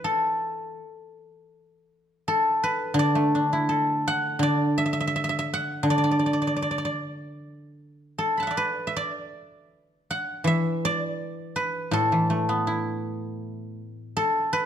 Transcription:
0.00 0.79 E3 soft
0.00 1.71 B4 soft
0.00 0.73 D5 medium
0.00 0.20 E5 medium
0.04 2.24 A4 medium
2.28 3.69 A4 medium
2.63 4.68 B4 medium
2.94 4.38 D3 medium
2.99 4.42 D5 medium
3.15 4.60 A3 soft
3.35 4.78 D4 soft
3.53 4.96 E4 soft
3.69 5.13 A4 soft
4.08 5.53 F#5 medium
4.39 5.82 D3 soft
4.39 5.90 D5 medium
4.78 4.85 E5 medium
4.86 4.93 E5 soft
4.93 5.00 E5 soft
5.01 5.07 E5 soft
5.07 5.15 E5 soft
5.16 5.24 E5 soft
5.24 5.29 E5 soft
5.29 5.38 E5 soft
5.39 7.11 E5 medium
5.54 7.14 F#5 medium
5.83 8.14 D3 soft
5.90 5.97 D5 medium
5.98 6.03 D5 soft
6.04 6.11 D5 soft
6.11 6.19 D5 soft
6.19 6.26 D5 soft
6.26 6.33 D5 soft
6.33 6.41 D5 soft
6.42 6.47 D5 soft
6.47 6.56 D5 soft
6.56 6.62 D5 soft
6.62 6.71 D5 soft
6.71 6.78 D5 soft
6.78 6.85 D5 soft
6.85 8.50 D5 soft
8.18 10.38 A4 soft
8.37 9.85 A5 soft
8.37 9.72 B5 soft
8.43 10.03 F#5 soft
8.47 8.96 D5 soft
8.47 8.87 E5 soft
8.57 10.62 B4 medium
8.87 10.47 E5 soft
8.97 10.81 D5 medium
10.11 11.71 F#5 medium
10.44 12.11 E3 soft
10.44 12.19 E5 medium
10.85 12.70 D5 medium
11.56 13.60 B4 medium
11.91 14.14 A2 soft
11.91 14.13 A4 medium
12.12 13.60 E3 soft
12.30 13.78 A3 soft
12.49 13.97 B3 soft
12.67 14.15 E4 soft
14.17 14.66 A4 medium
14.53 14.66 B4 medium

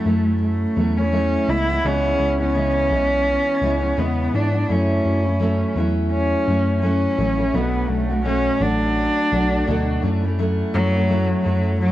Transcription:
0.00 0.38 A3 medium
0.05 0.64 F#2 medium
0.05 0.75 F#3 soft
0.05 0.75 A3 medium
0.05 0.77 C#4 medium
0.05 0.78 E4 medium
0.43 0.99 A3 medium
0.76 1.35 E2 medium
0.76 0.96 F#3 medium
0.76 0.96 A3 medium
0.76 0.96 C#4 medium
0.76 0.95 E4 medium
0.96 1.12 A3 soft
0.96 1.12 C#4 soft
0.96 1.51 C#4 medium
0.96 1.13 E4 soft
1.12 1.47 F#3 medium
1.12 1.48 A3 medium
1.12 1.49 C#4 medium
1.12 1.49 E4 medium
1.47 1.77 C#2 medium
1.47 1.67 E3 medium
1.47 1.68 G#3 medium
1.47 1.67 B3 medium
1.47 1.87 E4 medium
1.47 1.66 E4 medium
1.67 1.83 G#3 soft
1.67 1.83 B3 soft
1.67 1.83 E4 soft
1.83 2.13 C#2 medium
1.83 2.39 C#3 medium
1.83 2.39 E3 medium
1.83 2.39 G#3 medium
1.83 2.38 B3 medium
1.83 2.40 C#4 medium
1.83 2.37 E4 medium
2.19 2.91 C#2 medium
2.39 2.54 G#3 soft
2.39 2.54 B3 soft
2.39 4.01 C#4 medium
2.39 2.55 E4 medium
2.54 2.90 C#3 medium
2.54 2.89 E3 medium
2.54 2.90 G#3 medium
2.54 2.91 B3 medium
2.54 2.91 E4 medium
2.90 3.36 B1 medium
2.90 3.62 E3 medium
2.90 3.62 G#3 medium
2.90 3.63 B3 medium
2.90 3.64 E4 medium
3.62 3.91 C#2 medium
3.62 3.82 E3 medium
3.62 3.82 G#3 medium
3.62 3.81 B3 medium
3.62 3.79 E4 medium
3.81 3.97 G#3 soft
3.81 3.97 B3 soft
3.81 3.97 E4 soft
3.97 4.27 E2 medium
3.97 4.33 C#3 medium
3.97 4.32 E3 medium
3.97 4.32 G#3 medium
3.97 4.34 B3 medium
3.97 4.37 B3 medium
3.97 4.34 E4 medium
4.33 4.63 G#2 medium
4.33 4.53 E3 medium
4.33 4.53 G#3 medium
4.33 4.53 B3 medium
4.33 4.73 D4 medium
4.33 4.52 E4 medium
4.53 4.69 G#3 soft
4.53 4.69 B3 soft
4.53 4.69 E4 soft
4.69 4.98 F#2 medium
4.69 5.24 F#3 medium
4.69 5.24 A3 medium
4.69 5.24 C#4 medium
4.69 5.77 C#4 medium
4.69 5.23 E4 medium
5.05 5.63 F#2 medium
5.24 5.39 A3 soft
5.24 5.40 C#4 soft
5.24 5.40 E4 soft
5.40 5.74 F#3 medium
5.40 5.75 A3 medium
5.40 5.76 C#4 medium
5.40 5.76 E4 medium
5.76 6.34 E2 medium
5.76 6.46 F#3 medium
5.76 6.47 A3 medium
5.76 6.48 C#4 medium
5.76 6.48 E4 medium
6.13 6.79 C#4 medium
6.47 7.06 F#2 medium
6.47 6.81 F#3 soft
6.47 6.82 A3 medium
6.47 6.82 C#4 medium
6.47 6.83 E4 medium
6.82 7.17 F#3 medium
6.82 7.17 A3 medium
6.82 7.56 C#4 medium
6.82 7.18 C#4 medium
6.82 7.19 E4 medium
7.18 7.48 A1 medium
7.18 7.38 F#3 medium
7.18 7.38 A3 medium
7.18 7.37 C#4 medium
7.18 7.36 E4 medium
7.37 7.53 A3 soft
7.37 7.54 C#4 soft
7.37 7.53 E4 medium
7.54 7.83 B1 loud
7.54 8.09 B2 medium
7.54 8.09 F#3 medium
7.54 8.09 A3 medium
7.54 7.91 B3 medium
7.54 8.09 D4 medium
7.54 8.07 F#4 medium
7.89 8.48 B1 medium
7.89 8.25 A3 medium
8.09 8.24 A3 soft
8.09 8.25 D4 soft
8.09 8.25 F#4 soft
8.24 8.60 B2 medium
8.24 8.59 F#3 medium
8.24 8.60 A3 medium
8.24 8.63 C#4 medium
8.24 8.61 F#4 medium
8.60 9.06 A1 medium
8.60 9.31 F#3 soft
8.60 9.32 A3 medium
8.60 10.03 D4 loud
8.60 9.32 D4 medium
8.60 9.33 F#4 medium
9.31 9.61 B1 medium
9.31 9.66 F#3 medium
9.31 9.67 A3 medium
9.31 9.67 D4 medium
9.31 9.67 F#4 medium
9.67 9.97 D2 medium
9.67 10.03 B2 medium
9.67 10.01 F#3 medium
9.67 10.02 A3 medium
9.67 10.03 D4 medium
9.67 10.04 F#4 medium
10.03 10.62 F#2 medium
10.03 10.22 F#3 medium
10.03 10.23 A3 medium
10.03 10.22 C#4 medium
10.03 10.21 E4 medium
10.22 10.38 A3 soft
10.22 10.38 C#4 medium
10.22 10.38 E4 medium
10.39 10.94 F#3 medium
10.39 10.94 A3 medium
10.39 10.93 C#4 medium
10.39 10.92 E4 loud
10.74 11.33 F#2 loud
10.74 11.77 F#3 loud
10.94 11.09 A3 soft
10.94 11.09 C#4 soft
10.94 11.10 E4 soft
11.09 11.43 F#3 medium
11.09 11.44 A3 medium
11.09 11.45 C#4 medium
11.09 11.46 E4 medium
11.45 11.92 F#2 medium
11.45 11.92 F#3 medium
11.45 11.92 A3 medium
11.45 11.92 C#4 medium
11.45 11.92 E4 medium
11.81 11.92 F#3 loud

